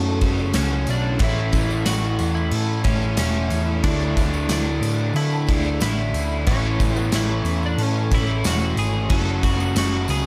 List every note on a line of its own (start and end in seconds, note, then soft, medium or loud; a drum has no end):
0.00 0.21 F#2 loud
0.00 1.18 F#2 medium
0.00 1.19 C#3 loud
0.00 0.20 F#3 loud
0.00 0.25 A3 loud
0.00 0.21 C#4 loud
0.00 0.59 E4 medium
0.00 0.21 F#4 loud
0.00 0.22 A4 medium
0.21 0.53 F#1 loud
0.21 0.56 A3 medium
0.21 0.54 C#4 medium
0.21 0.53 F#4 medium
0.21 0.55 G#4 medium
0.21 kick medium
0.21 tambourine soft
0.21 crash medium
0.26 0.54 F#3 medium
0.38 tambourine soft
0.53 0.86 C#2 medium
0.53 1.19 F#3 medium
0.53 1.22 A3 medium
0.53 0.89 C#4 medium
0.53 1.20 C#4 medium
0.53 0.88 F#4 medium
0.53 snare loud
0.53 tambourine loud
0.53 crash medium
0.58 1.21 F#4 medium
0.87 1.19 B1 loud
0.87 1.23 D4 medium
0.87 3.22 E4 medium
0.87 tambourine medium
0.87 crash medium
1.19 1.52 A1 loud
1.19 2.83 A2 medium
1.19 2.87 E3 loud
1.19 2.86 A3 loud
1.19 2.84 C#4 loud
1.19 1.54 C#5 loud
1.19 kick loud
1.19 crash medium
1.24 2.84 E4 loud
1.24 1.90 E4 medium
1.52 1.84 A1 medium
1.52 1.87 B4 medium
1.52 kick medium
1.52 tambourine medium
1.52 crash medium
1.70 tambourine medium
1.85 2.17 A1 medium
1.85 2.32 F#4 medium
1.85 2.20 C#5 medium
1.85 snare loud
1.85 tambourine loud
1.85 crash medium
2.19 2.51 E2 medium
2.19 2.53 B4 medium
2.19 tambourine medium
2.19 crash medium
2.35 2.84 E4 loud
2.35 tambourine soft
2.51 2.83 A2 loud
2.51 2.86 A4 medium
2.51 tambourine soft
2.51 crash medium
2.84 3.16 A1 loud
2.84 3.16 A2 medium
2.84 3.19 E3 medium
2.84 3.19 A3 medium
2.84 3.18 C#4 medium
2.84 3.17 C#4 medium
2.84 3.21 E4 medium
2.84 3.19 G#4 medium
2.84 kick medium
2.84 tambourine soft
2.84 crash medium
3.02 tambourine soft
3.17 3.49 E1 medium
3.17 3.82 A2 medium
3.17 3.83 E3 medium
3.17 3.85 A3 medium
3.17 3.83 C#4 medium
3.17 3.52 F#4 loud
3.17 snare loud
3.17 tambourine loud
3.17 crash loud
3.21 3.83 C#4 medium
3.21 3.87 E4 medium
3.50 3.82 E2 loud
3.50 5.85 E4 medium
3.50 tambourine medium
3.50 crash medium
3.84 4.15 D2 loud
3.84 5.46 D3 loud
3.84 5.52 A3 loud
3.84 4.51 D4 loud
3.84 5.48 D4 loud
3.84 5.49 E4 loud
3.84 4.17 C#5 loud
3.84 kick loud
3.84 tambourine soft
3.84 crash medium
4.00 tambourine soft
4.17 4.48 D2 loud
4.17 4.50 B4 medium
4.17 kick medium
4.17 tambourine medium
4.17 crash medium
4.34 tambourine medium
4.48 4.80 D2 loud
4.48 4.83 C#5 medium
4.48 snare loud
4.48 tambourine loud
4.48 crash medium
4.52 5.16 D4 medium
4.65 tambourine soft
4.81 5.13 A2 medium
4.81 5.16 B4 medium
4.81 tambourine medium
4.81 crash medium
4.97 tambourine soft
5.13 5.46 D3 loud
5.13 5.81 E4 loud
5.13 5.48 A4 medium
5.13 tambourine soft
5.13 crash medium
5.30 tambourine soft
5.47 5.80 D2 loud
5.47 5.86 E4 medium
5.47 5.81 G#4 medium
5.47 kick medium
5.47 tambourine soft
5.47 crash medium
5.51 5.82 D3 medium
5.51 5.83 A3 medium
5.51 5.81 D4 medium
5.63 tambourine soft
5.80 6.12 A1 medium
5.80 6.46 D3 medium
5.80 6.49 A3 medium
5.80 6.47 E4 medium
5.80 6.15 F#4 medium
5.80 snare loud
5.80 tambourine loud
5.80 crash medium
5.85 6.47 D4 medium
5.85 6.51 E4 medium
5.98 tambourine soft
6.13 6.45 D2 medium
6.13 8.48 E4 medium
6.13 tambourine medium
6.13 crash medium
6.31 tambourine soft
6.47 6.78 A1 loud
6.47 8.10 A2 medium
6.47 8.14 E3 loud
6.47 8.14 A3 loud
6.47 6.98 C#4 medium
6.47 6.80 C#5 loud
6.47 kick loud
6.47 crash medium
6.51 8.13 C#4 loud
6.51 8.11 E4 loud
6.79 7.11 A1 medium
6.79 7.13 B4 medium
6.79 kick medium
6.79 tambourine medium
6.79 crash medium
6.96 7.15 B3 medium
6.96 tambourine medium
7.12 7.43 A1 medium
7.12 7.65 E4 loud
7.12 7.45 C#5 medium
7.12 snare loud
7.12 tambourine loud
7.12 crash medium
7.44 7.76 E2 medium
7.44 7.79 B4 medium
7.44 tambourine medium
7.44 crash medium
7.63 7.82 D4 medium
7.63 tambourine soft
7.78 8.09 A2 medium
7.78 8.11 A4 loud
7.78 tambourine soft
7.78 crash medium
7.82 8.14 C#4 medium
8.11 8.43 A1 medium
8.11 8.46 A3 medium
8.11 8.46 C#4 medium
8.11 8.48 E4 medium
8.11 8.46 E4 loud
8.11 8.44 G#4 medium
8.11 kick medium
8.11 tambourine soft
8.11 crash medium
8.15 8.43 A2 medium
8.15 8.45 E3 medium
8.27 tambourine soft
8.44 8.75 E1 medium
8.44 9.08 A2 medium
8.44 9.10 E3 medium
8.44 9.10 A3 medium
8.44 9.12 C#4 medium
8.44 8.78 F#4 medium
8.44 8.78 F#4 loud
8.44 snare loud
8.44 tambourine loud
8.44 crash medium
8.48 9.13 E4 medium
8.76 9.08 G#1 medium
8.76 10.26 E4 medium
8.76 9.11 G#4 medium
8.76 tambourine medium
8.76 crash medium
9.09 9.41 F#1 loud
9.09 10.26 F#2 medium
9.09 10.26 C#3 loud
9.09 10.26 F#3 loud
9.09 10.26 A3 loud
9.09 10.26 C#4 loud
9.09 9.44 A4 loud
9.09 9.44 C#5 medium
9.09 kick loud
9.09 crash medium
9.13 10.26 F#4 loud
9.43 9.74 F#1 loud
9.43 9.77 F#4 loud
9.43 9.76 B4 medium
9.43 kick medium
9.43 tambourine medium
9.43 crash medium
9.60 tambourine medium
9.75 10.07 F#1 loud
9.75 10.10 F#4 loud
9.75 10.09 C#5 medium
9.75 snare loud
9.75 tambourine loud
9.75 crash loud
10.08 10.26 C#2 medium
10.08 10.26 G#4 loud
10.08 10.26 B4 medium
10.08 tambourine medium
10.08 crash medium